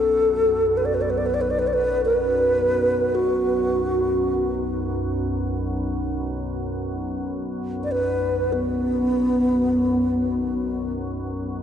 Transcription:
Already playing: synth drone B1 F#2, bass flute A4
0.77 bass flute B4
0.85 bass flute D5
0.94 bass flute B4
1.01 bass flute D5
1.10 bass flute B4
1.18 bass flute D5
1.26 bass flute B4
1.34 bass flute D5
1.41 bass flute B4
1.51 bass flute D5
1.59 bass flute B4
1.67 bass flute D5
1.73 bass flute B4
2.05 bass flute B4
3.15 bass flute F#4
7.84 bass flute D5
7.92 bass flute B4
8.53 bass flute B3

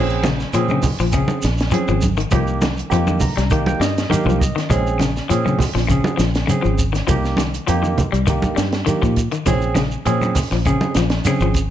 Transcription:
Already playing: fingered electric bass A#1, clean electric guitar F3, tine electric piano C4 C#4 G#4
0.09 shekere
0.23 clean electric guitar C#3, snare, closed hi-hat, high conga, shekere
0.40 snare, shekere
0.53 fingered electric bass A#2, clean electric guitar F3, tine electric piano C4 C#4 G#4, closed hi-hat, high conga, shekere
0.69 clean electric guitar C#3, high conga, shekere
0.83 kick, open hi-hat, low conga, shekere
1.00 fingered electric bass A#1, clean electric guitar F3, shekere
1.12 clean electric guitar C#3, tine electric piano C4 C#4 G#4, kick, closed hi-hat, high conga, shekere
1.28 high conga, shekere
1.42 fingered electric bass A#1, snare, closed hi-hat, shekere
1.58 snare, closed hi-hat, shekere
1.71 clean electric guitar F3, tine electric piano C4 C#4 G#4, closed hi-hat, high conga, shekere
1.88 fingered electric bass G#1, clean electric guitar F3, shekere
2.01 kick, closed hi-hat, high conga, shekere
2.17 clean electric guitar D#3, closed hi-hat, shekere
2.31 fingered electric bass C2, clean electric guitar F3, tine electric piano A#3 D#4 G4, kick, closed hi-hat, high conga, low conga, shekere
2.47 shekere
2.61 clean electric guitar D#3, snare, closed hi-hat, high conga, shekere
2.77 closed hi-hat, shekere
2.90 fingered electric bass F2, clean electric guitar F3, tine electric piano A#3 D#4 G4, closed hi-hat, high conga, shekere
3.07 clean electric guitar D#3, high conga, shekere
3.20 tine electric piano A#5, kick, open hi-hat, low conga, shekere
3.37 fingered electric bass C2, clean electric guitar G3, snare, closed hi-hat, shekere
3.50 clean electric guitar D#3, tine electric piano A#3 D#4 G4 G5, kick, closed hi-hat, shekere
3.66 tine electric piano G5, high conga, shekere
3.80 fingered electric bass G2, clean electric guitar G3, tine electric piano D#5, snare, closed hi-hat, shekere
3.98 snare, closed hi-hat, shekere
4.09 clean electric guitar D#3, tine electric piano A#3 D#4 G4 F5, closed hi-hat, high conga, shekere
4.25 fingered electric bass C2, clean electric guitar F3, high conga
4.30 shekere
4.40 tine electric piano D#5, kick, closed hi-hat, shekere
4.56 clean electric guitar D#3, snare, closed hi-hat, shekere
4.70 fingered electric bass A#1, clean electric guitar G#3, tine electric piano C4 C#4 G#4, kick, closed hi-hat, high conga, low conga, shekere
4.87 shekere
4.99 clean electric guitar C#3, snare, closed hi-hat, high conga, shekere
5.17 snare, shekere
5.29 fingered electric bass A#2, clean electric guitar F3, tine electric piano C4 C#4 G#4, closed hi-hat, high conga, shekere
5.46 clean electric guitar C#3, high conga, shekere
5.59 kick, snare, open hi-hat, low conga, shekere
5.75 fingered electric bass A#1, clean electric guitar F3, snare, shekere
5.88 clean electric guitar C#3, tine electric piano C4 C#4 G#4, kick, closed hi-hat, shekere
6.04 high conga, shekere
6.17 fingered electric bass A#1, clean electric guitar F3, snare, closed hi-hat, shekere
6.34 snare, closed hi-hat, shekere
6.47 clean electric guitar C#3, tine electric piano C4 C#4 G#4, closed hi-hat, high conga, shekere
6.62 fingered electric bass G#1, clean electric guitar F3, shekere
6.78 kick, closed hi-hat, shekere
6.93 clean electric guitar D#3, snare, closed hi-hat, shekere
7.07 fingered electric bass C2, clean electric guitar F3, tine electric piano A#3 D#4 G4, kick, closed hi-hat, high conga, low conga, shekere
7.25 snare, shekere
7.37 clean electric guitar D#3, snare, closed hi-hat, high conga, shekere
7.54 closed hi-hat, shekere
7.67 fingered electric bass F2, clean electric guitar F3, tine electric piano A#3 D#4 G4, closed hi-hat, high conga, shekere
7.83 clean electric guitar D#3, high conga, shekere
7.98 kick, closed hi-hat, low conga, shekere
8.12 fingered electric bass C2, clean electric guitar G3, closed hi-hat, shekere
8.27 clean electric guitar D#3, tine electric piano A#3 D#4 G4, kick, closed hi-hat, high conga, shekere
8.42 kick, high conga, shekere
8.56 fingered electric bass G2, clean electric guitar G3, snare, closed hi-hat, shekere
8.72 snare, closed hi-hat, shekere
8.86 clean electric guitar D#3, tine electric piano A#3 D#4 G4, closed hi-hat, high conga, shekere
9.02 fingered electric bass A#2, clean electric guitar F3, kick, shekere
9.16 kick, closed hi-hat, shekere
9.32 clean electric guitar D#3, closed hi-hat, shekere
9.46 fingered electric bass A#1, clean electric guitar F3, tine electric piano C4 C#4 G#4, kick, snare, closed hi-hat, high conga, low conga, shekere
9.62 shekere
9.75 clean electric guitar C#3, snare, closed hi-hat, high conga, shekere
9.92 shekere
10.05 fingered electric bass A#2, clean electric guitar F3, tine electric piano C4 C#4 G#4, closed hi-hat, high conga, shekere
10.21 muted clean electric guitar stroke, high conga, shekere
10.35 kick, snare, open hi-hat, low conga, shekere
10.51 fingered electric bass A#1, clean electric guitar F3, snare, shekere
10.65 clean electric guitar C#3, tine electric piano C4 C#4 G#4, kick, closed hi-hat, high conga, shekere
10.81 high conga, shekere
10.94 fingered electric bass A#1, clean electric guitar F3, snare, closed hi-hat, shekere
11.10 snare, closed hi-hat, shekere
11.25 clean electric guitar C#3, tine electric piano C4 C#4 G#4, snare, closed hi-hat, high conga, shekere
11.40 fingered electric bass G#1, clean electric guitar F3, shekere
11.54 kick, closed hi-hat, shekere

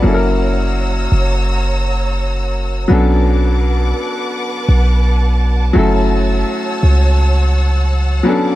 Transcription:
Already playing: grand piano F#4 D5, string section F#5
0.02 808-style bass F#1, grand piano F#3 A#3 C#4 E4, string section C#5 A#5 E6
0.08 grand piano A4
0.14 grand piano A#4
1.12 808-style bass F#1
2.88 808-style bass B1, grand piano F#3 B3 C#4 D4, string section B4 F#5 A5 D6
2.93 grand piano A4
4.69 808-style bass B1
5.73 808-style bass F#1, grand piano F#3 A3 C#4, string section C#5 F#5 E6
5.77 grand piano E4 A4
6.83 808-style bass C#2
8.23 grand piano F#3 B3 C#4, string section B4 D6
8.27 grand piano D4 A4

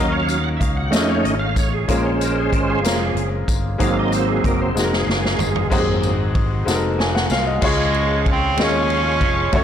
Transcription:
Already playing: fingered electric bass D#2, grand piano D#3 A#3 C#4 D#4 F#4, tonewheel organ F#3 C#4 D#5 F5
0.00 grand piano A#4
0.12 tonewheel organ C#5
0.29 tonewheel organ F5, closed hi-hat, tambourine
0.44 tonewheel organ F#5
0.57 fingered electric bass C#2, tonewheel organ E5 F5
0.61 kick, closed hi-hat
0.77 tonewheel organ F#5
0.91 fingered electric bass F2, tonewheel organ A3 C#4 D#4 D#5, grand piano A3 C#4 D#4 F4 G#4, snare, closed hi-hat, tambourine
1.10 tonewheel organ C#5
1.24 fingered electric bass G#1, tonewheel organ D#5, closed hi-hat
1.39 tonewheel organ F5
1.56 fingered electric bass A1, tonewheel organ C#5, kick, closed hi-hat, tambourine
1.73 tonewheel organ G#4
1.88 fingered electric bass A#1, grand piano A#2 G#3 A#3 C#4 F4 G#4, tonewheel organ G#3 C#4 A#4 C5, kick, closed hi-hat, tambourine
2.05 tonewheel organ C#5
2.21 tonewheel organ A#4, closed hi-hat, tambourine
2.40 tonewheel organ G#4
2.52 fingered electric bass G#1, tonewheel organ A#4, kick, closed hi-hat
2.70 tonewheel organ G#4
2.82 fingered electric bass F1, grand piano G#3 A#3 C4 F4 A#4, closed hi-hat, tambourine
2.86 snare
2.91 grand piano C#4
3.15 fingered electric bass F#1, closed hi-hat
3.48 fingered electric bass G1, kick, closed hi-hat, tambourine
3.78 fingered electric bass G#1, grand piano G#2 G#3 C4 D#4 F#4 G#4, tonewheel organ F#3 A#3 C4 F5, kick, closed hi-hat, tambourine
3.99 tonewheel organ D#5
4.12 tonewheel organ C5, closed hi-hat, tambourine
4.29 tonewheel organ G#4
4.44 fingered electric bass F#1, tonewheel organ A#4, kick, closed hi-hat
4.62 tonewheel organ C5
4.75 fingered electric bass F1, grand piano G#3 C4 D#4 F#4 G#4, snare, tambourine
4.80 tonewheel organ F#4
4.84 grand piano A#4
4.93 tonewheel organ G#4, snare
5.07 fingered electric bass F#1, snare
5.25 snare
5.39 fingered electric bass G1, floor tom, tambourine
5.55 floor tom
5.70 fingered electric bass G#1, grand piano G#2 G#3 C4 D#4 F#4 G4, tonewheel organ F#3 A#3 C4, kick, crash, tambourine
5.80 grand piano G#4
6.03 ride, tambourine
6.35 kick, ride
6.65 fingered electric bass F1, grand piano G#3 C4 D#4 F#4 A4, snare, tambourine
6.75 grand piano A#4
6.99 grand piano G#5, snare
7.15 grand piano F#5, snare
7.30 fingered electric bass C2, grand piano F5, snare, tambourine
7.47 grand piano D#5
7.62 fingered electric bass C#2, grand piano C#3 G#3 C#4 F4 G#4 C#5, horn section C#3 F3 G#3, tonewheel organ G#4 F5 C#6, kick, crash
7.94 ride
8.26 horn section C4, kick, ride
8.57 fingered electric bass D#2, horn section F3 G#3, grand piano G#3 C#4 F4 G#4 D#5, snare, ride
8.62 horn section C#4
8.90 ride
9.21 fingered electric bass F1, kick, ride
9.52 fingered electric bass F#1, horn section F#3 A3, grand piano A3 C#4 F#4 A4 C#5, tonewheel organ A4 F#5, kick, ride
9.57 horn section C#4

